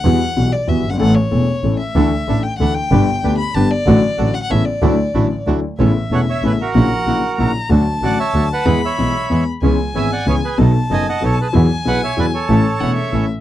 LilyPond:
<<
  \new Staff \with { instrumentName = "Violin" } { \time 3/4 \key d \major \tempo 4 = 188 fis''4. d''8 \tuplet 3/2 { e''4 fis''8 } | fis''8 cis''2 e''8~ | e''4. g''8 fis''8 g''8~ | g''4. b''8 a''8 d''8~ |
d''4. fis''16 fis''16 e''8 d''8~ | d''2 r4 | \key a \major e''2. | fis''2 ais''4 |
a''2. | b''2~ b''8 r8 | gis''2. | a''2. |
gis''2. | a''4 fis''8 e''4 r8 | }
  \new Staff \with { instrumentName = "Bandoneon" } { \time 3/4 \key d \major r2. | r2. | r2. | r2. |
r2. | r2. | \key a \major r4 <cis'' fis''>8 <cis'' e''>8 <e' b'>8 <fis' bes'>8~ | <fis' bes'>2~ <fis' bes'>8 r8 |
r4 <d'' fis''>8 <cis'' e''>4 <b' fis''>8~ | <b' fis''>8 <cis'' e''>2 r8 | r4 <e'' gis''>8 <d'' fis''>8 <gis' cis''>8 <gis' b'>8 | r4 <dis'' gis''>8 <dis'' fis''>8 <a' cis''>8 <gis' b'>8 |
r4 <b' fis''>8 <cis'' e''>8 <b' d''>8 <a' cis''>8~ | <a' cis''>2~ <a' cis''>8 r8 | }
  \new Staff \with { instrumentName = "Bandoneon" } { \time 3/4 \key d \major r2. | r2. | <d' e' a'>8 r8 <d' e' a'>8 r8 <d' e' a'>8 r8 | <d' g' b'>8 r8 <d' g' b'>8 r8 <d' g' b'>8 r8 |
<d' fis' a'>8 r8 <d' fis' a'>8 r8 <b cis' a'>8 r8 | <d' e' fis'>8 r8 <d' e' fis'>8 r8 <d' e' fis'>8 r8 | \key a \major <b cis' a'>8 r8 <b cis' a'>8 r8 <b cis' a'>8 r8 | <ais e' fis'>8 r8 <ais e' fis'>8 r8 <ais e' fis'>8 r8 |
<a d' fis'>8 r8 <a d' fis'>8 r8 <a d' fis'>8 r8 | <gis b e'>8 r8 <gis b e'>8 r8 <gis b e'>8 r8 | <b cis' e'>8 r8 <b cis' e'>8 r8 <b cis' e'>8 r8 | <a b dis'>8 r8 <a b dis'>8 r8 <a b dis'>8 r8 |
<fis gis e'>8 r8 <fis gis e'>8 r8 <fis gis e'>8 r8 | <a cis' e'>8 r8 <a cis' e'>8 r8 <a cis' e'>8 r8 | }
  \new Staff \with { instrumentName = "Grand piano" } { \clef bass \time 3/4 \key d \major <e, e g b fis'>8 r8 <b,, b, e g b fis'>8 r8 <e, e g b fis'>8 r32 fis,,32 g,,32 gis,,32 | <a,, a, e a cis' a'>8 r8 <e,, e, e a cis' a'>8 r8 <a,, a, e a cis' a'>8 r8 | <d, d e a d' a'>8 r8 <a,, a, e a d' a'>8 r8 <d, d e a d' a'>8 r8 | <g,, g, d g b g'>8 r8 <d, d g b g'>8 r8 <g,, g, d g b g'>8 r8 |
<a,, a, d fis a fis'>8 r8 <a,, a, d fis a fis'>8 r8 <a,, a, cis a b e'>8 r8 | <d, d fis a e'>8 r8 <a,, a, d fis a e'>8 r8 <d, d fis a e'>8 r8 | \key a \major <a,, a, cis a b e'>8 r8 <e,, e, cis a b e'>8 r8 <a,, a, cis a b e'>8 r8 | <ais,, ais, cis fis ais e'>8 r8 <ais,, ais, cis fis ais e'>8 r8 <ais,, ais, cis fis ais e'>8 r8 |
<d, d fis a fis'>8 r8 <a,, a, d fis a fis'>8 r8 <d, d fis a fis'>8 r8 | <e, e gis b gis'>8 r8 <b,, b, e gis b gis'>8 r8 <e, e gis b gis'>8 r8 | <cis, cis e b cis' gis'>8 r8 <gis,, gis, e b cis' gis'>8 r8 <cis, cis e b cis' gis'>8 r8 | <b,, b, fis b dis' a'>8 r8 <fis,, fis, fis b dis' a'>8 r8 <b,, b, fis b dis' a'>8 r8 |
<e, e fis b e' gis'>8 r8 <b,, b, fis b e' gis'>8 r8 <e, e fis b e' gis'>8 r8 | <a,, a, e a cis' a'>8 r8 <e,, e, e a cis' a'>8 r8 <a,, a, e a cis' a'>8 r8 | }
  \new Staff \with { instrumentName = "Double bass" } { \clef bass \time 3/4 \key d \major e,8 r8 b,,8 r8 e,8 g,,8 | a,,8 r8 e,,8 r8 a,,8 r8 | d,8 r8 a,,8 r8 d,8 r8 | g,,8 r8 d,8 r8 g,,8 r8 |
a,,8 r8 a,,8 r8 a,,8 r8 | d,8 r8 a,,8 r8 d,8 r8 | \key a \major a,,8 r8 e,,8 r8 a,,8 r8 | ais,,8 r8 ais,,8 r8 ais,,8 r8 |
d,8 r8 a,,8 r8 d,8 r8 | e,8 r8 b,,8 r8 e,8 r8 | cis,8 r8 gis,,8 r8 cis,8 r8 | b,,8 r8 fis,,8 r8 b,,8 r8 |
e,8 r8 b,,8 r8 e,8 r8 | a,,8 r8 e,,8 r8 a,,8 r8 | }
>>